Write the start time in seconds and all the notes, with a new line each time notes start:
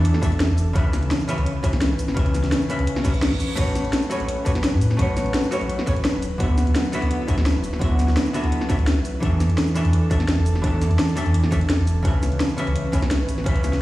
Already playing: E3 D4 A4 E5
0.05 closed hi-hat
0.14 snare
0.21 E2 E3 D4 A4 E5, kick, closed hi-hat, shaker
0.32 closed hi-hat
0.40 snare, closed hi-hat
0.49 E1
0.58 closed hi-hat, shaker
0.73 C#2 C#3 C#4 B4, kick, closed hi-hat
0.78 E5
0.93 snare, closed hi-hat, shaker
1.02 C#2, closed hi-hat
1.11 snare, closed hi-hat, shaker
1.20 shaker
1.28 C#3 C#4 B4 E5, closed hi-hat, shaker
1.38 C#2, closed hi-hat
1.46 closed hi-hat
1.63 C#2 C#3 C#4 B4 E5, kick, closed hi-hat, shaker
1.73 snare, closed hi-hat
1.81 snare, closed hi-hat
1.91 G#1
1.99 closed hi-hat, shaker
2.08 snare
2.14 C#2 C#3 C#4 B4, kick, closed hi-hat
2.19 E5
2.26 closed hi-hat
2.34 snare, closed hi-hat, shaker
2.44 C#2, snare, closed hi-hat
2.52 snare, closed hi-hat, shaker
2.61 shaker
2.69 C#3 C#4 B4 E5, closed hi-hat, shaker
2.79 C#2, closed hi-hat
2.87 closed hi-hat, reverse cymbal
2.96 snare
3.04 C#2 C#3 C#4 B4 E5, kick, closed hi-hat, shaker
3.14 closed hi-hat, shaker
3.22 snare, closed hi-hat
3.32 G#1, kick
3.40 closed hi-hat, shaker
3.55 A1 F#3 A3 F#4 B4, kick, closed hi-hat, crash
3.60 C#5
3.75 snare, closed hi-hat, shaker
3.85 A1, closed hi-hat
3.93 snare, closed hi-hat, shaker
4.02 shaker
4.10 A3 F#4 B4 C#5, closed hi-hat, shaker
4.20 A1, closed hi-hat
4.29 closed hi-hat
4.45 A1 A3 F#4 B4 C#5, kick, closed hi-hat, shaker
4.55 snare, closed hi-hat
4.64 snare, closed hi-hat
4.73 A2
4.81 closed hi-hat, shaker
4.91 snare
4.97 A1 A3 F#4 B4, kick, closed hi-hat
5.02 C#5
5.17 snare, closed hi-hat, shaker
5.26 A1, closed hi-hat
5.34 snare, closed hi-hat, shaker
5.44 shaker
5.51 A3 F#4 B4 C#5, closed hi-hat, shaker
5.61 A1, closed hi-hat
5.69 closed hi-hat
5.79 snare
5.86 A1 A3 F#4 B4 C#5, kick, closed hi-hat, shaker
5.96 closed hi-hat
6.05 snare, closed hi-hat
6.14 D1
6.22 E4, closed hi-hat, shaker
6.38 D2 D3 B3 F#4, kick, closed hi-hat
6.43 E5
6.58 snare, closed hi-hat, shaker
6.67 D2, closed hi-hat
6.76 snare, closed hi-hat, shaker
6.85 shaker
6.92 D3 B3 F#4 E5, closed hi-hat, shaker
7.02 D2, closed hi-hat
7.11 closed hi-hat
7.27 D2 D3 B3 F#4 E5, kick, closed hi-hat, shaker
7.38 snare, closed hi-hat
7.46 snare, closed hi-hat
7.55 D1
7.64 closed hi-hat, shaker
7.73 snare
7.79 D2 D3 B3 F#4, kick, closed hi-hat
7.84 E5
7.99 snare, closed hi-hat, shaker
8.08 D2, snare, closed hi-hat
8.17 snare, closed hi-hat, shaker
8.26 shaker
8.33 D3 B3 F#4 E5, closed hi-hat, shaker
8.44 D2, closed hi-hat
8.52 closed hi-hat
8.61 snare
8.69 D2 D3 B3 F#4 E5, kick, closed hi-hat, shaker
8.79 closed hi-hat
8.87 snare, closed hi-hat
8.97 B1
9.05 closed hi-hat, shaker
9.20 E2 E3 D4 A4, kick, closed hi-hat
9.25 E5
9.40 snare, closed hi-hat, shaker
9.50 E2, closed hi-hat
9.58 snare, closed hi-hat, shaker
9.67 shaker
9.74 E3 D4 A4 E5, closed hi-hat, shaker
9.85 E2, closed hi-hat
9.93 closed hi-hat
10.10 E2 E3 D4 A4 E5, kick, closed hi-hat, shaker
10.20 snare, closed hi-hat
10.28 snare, closed hi-hat
10.38 E1
10.46 closed hi-hat, shaker
10.55 snare
10.62 E2 E3 D4 A4, kick, closed hi-hat
10.66 E5
10.82 snare, closed hi-hat, shaker
10.91 E2, closed hi-hat
10.99 snare, closed hi-hat, shaker
11.08 shaker
11.15 E3 D4 A4 E5, closed hi-hat, shaker
11.26 E2, closed hi-hat
11.34 closed hi-hat
11.44 snare
11.51 E2 E3 D4 A4 E5, kick, closed hi-hat, shaker
11.61 closed hi-hat
11.70 snare, closed hi-hat
11.79 E1
11.87 closed hi-hat, shaker
12.03 C#2 C#3 C#4 B4, kick, closed hi-hat
12.07 E5
12.23 snare, closed hi-hat, shaker
12.32 C#2, closed hi-hat
12.40 snare, closed hi-hat, shaker
12.49 shaker
12.57 C#3 C#4 B4 E5, closed hi-hat, shaker
12.67 C#2, closed hi-hat
12.76 closed hi-hat
12.92 C#2 C#3 C#4 B4 E5, kick, closed hi-hat, shaker
13.02 snare, closed hi-hat
13.11 snare, closed hi-hat
13.20 G#1
13.29 closed hi-hat, shaker
13.38 snare
13.44 C#2 C#3 C#4 B4, kick, closed hi-hat
13.49 E5
13.56 closed hi-hat
13.64 snare, closed hi-hat, shaker
13.73 C#2, snare, closed hi-hat